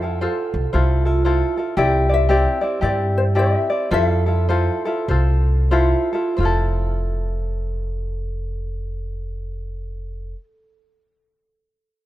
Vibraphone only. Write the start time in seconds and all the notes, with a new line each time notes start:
Already playing: A4
0.22 A4
0.73 F4
1.07 F4
1.78 G4
3.91 A4
5.72 F4
6.38 A4